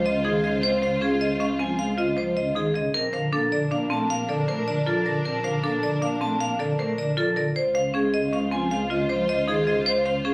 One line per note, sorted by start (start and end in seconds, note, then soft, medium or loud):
0.00 2.82 C#2 medium
0.00 2.71 F4 medium
0.00 0.11 C5 medium
0.00 2.71 C5 medium
0.05 0.20 C#3 medium
0.05 0.30 D#5 medium
0.24 0.39 D#3 medium
0.24 0.50 D#4 medium
0.24 0.50 G#4 medium
0.44 0.58 C#3 medium
0.44 0.69 G#4 medium
0.44 0.69 D#5 medium
0.63 0.77 C4 medium
0.63 0.88 C5 medium
0.82 0.97 C#3 medium
0.82 1.07 C5 medium
0.82 1.07 F5 medium
1.01 1.16 G#3 medium
1.01 1.26 C#4 medium
1.01 1.27 G#4 medium
1.21 1.35 C#3 medium
1.21 1.46 D#5 medium
1.40 1.54 G#3 medium
1.40 1.65 C#4 medium
1.40 1.65 F5 medium
1.59 1.74 F3 medium
1.59 1.84 C4 medium
1.59 1.84 G#5 medium
1.78 1.93 G#3 medium
1.78 2.04 F5 medium
1.97 2.12 C#3 medium
1.97 2.23 F4 medium
1.97 2.23 D#5 medium
2.17 2.31 F3 medium
2.17 2.42 C5 medium
2.36 2.51 C#3 medium
2.36 2.61 D#5 medium
2.55 2.70 D#3 medium
2.55 2.80 D#4 medium
2.55 2.81 G#4 medium
2.74 2.89 C#3 medium
2.74 2.99 G#4 medium
2.74 3.00 D#5 medium
2.94 7.44 A#1 medium
2.94 3.08 C4 medium
2.94 7.32 D4 medium
2.94 7.32 A#4 medium
2.94 3.19 A#4 medium
3.13 3.28 D3 medium
3.13 3.38 C5 medium
3.13 3.38 F5 medium
3.32 3.47 A#3 medium
3.32 3.57 D4 medium
3.32 3.57 A4 medium
3.52 3.66 D3 medium
3.52 3.77 D5 medium
3.71 3.85 A#3 medium
3.71 3.96 D4 medium
3.71 3.96 F5 medium
3.90 4.05 A3 medium
3.90 4.15 C4 medium
3.90 4.15 A5 medium
4.09 4.24 A#3 medium
4.09 4.35 F5 medium
4.29 4.43 D3 medium
4.29 4.54 A4 medium
4.29 4.54 D5 medium
4.48 4.62 A3 medium
4.48 4.73 A#4 medium
4.48 4.73 C5 medium
4.67 4.81 D3 medium
4.67 4.92 D5 medium
4.87 5.01 F3 medium
4.87 5.11 F4 medium
4.87 5.11 A4 medium
5.05 5.20 D3 medium
5.05 5.30 A#4 medium
5.05 5.31 D5 medium
5.25 5.39 C4 medium
5.25 5.50 A#4 medium
5.44 5.58 D3 medium
5.44 5.69 C5 medium
5.44 5.69 F5 medium
5.63 5.78 A#3 medium
5.63 5.88 D4 medium
5.63 5.88 A4 medium
5.83 5.97 D3 medium
5.83 6.08 D5 medium
6.02 6.16 A#3 medium
6.02 6.27 D4 medium
6.02 6.27 F5 medium
6.21 6.35 A3 medium
6.21 6.46 C4 medium
6.21 6.46 A5 medium
6.40 6.55 A#3 medium
6.40 6.65 F5 medium
6.59 6.74 D3 medium
6.59 6.84 A4 medium
6.59 6.84 D5 medium
6.79 6.93 A3 medium
6.79 7.04 A#4 medium
6.79 7.04 C5 medium
6.97 7.12 D3 medium
6.97 7.23 D5 medium
7.17 7.32 F3 medium
7.17 7.42 F4 medium
7.17 7.42 A4 medium
7.36 7.50 D3 medium
7.36 7.61 A#4 medium
7.36 7.61 D5 medium
7.56 10.34 C#2 medium
7.56 10.34 F4 medium
7.56 10.34 C5 medium
7.56 7.81 C5 medium
7.75 7.89 C#3 medium
7.75 8.00 C5 medium
7.75 8.00 F5 medium
7.94 8.08 G#3 medium
7.94 8.19 C#4 medium
7.94 8.19 G#4 medium
8.14 8.28 C#3 medium
8.14 8.38 D#5 medium
8.32 8.47 G#3 medium
8.32 8.57 C#4 medium
8.32 8.58 F5 medium
8.51 8.66 F3 medium
8.51 8.76 C4 medium
8.51 8.77 G#5 medium
8.71 8.85 G#3 loud
8.71 8.96 F5 medium
8.90 9.04 C#3 medium
8.90 9.15 F4 medium
8.90 9.15 D#5 medium
9.09 9.24 F3 medium
9.09 9.34 C5 medium
9.28 9.43 C#3 medium
9.28 9.54 D#5 medium
9.48 9.62 D#3 medium
9.48 9.73 D#4 medium
9.48 9.73 G#4 medium
9.67 9.81 C#3 medium
9.67 9.92 G#4 medium
9.67 9.92 D#5 medium
9.86 10.11 C5 loud
10.06 10.20 C#3 medium
10.06 10.30 C5 medium
10.06 10.30 F5 medium
10.25 10.34 G#3 medium
10.25 10.34 C#4 medium
10.25 10.34 G#4 medium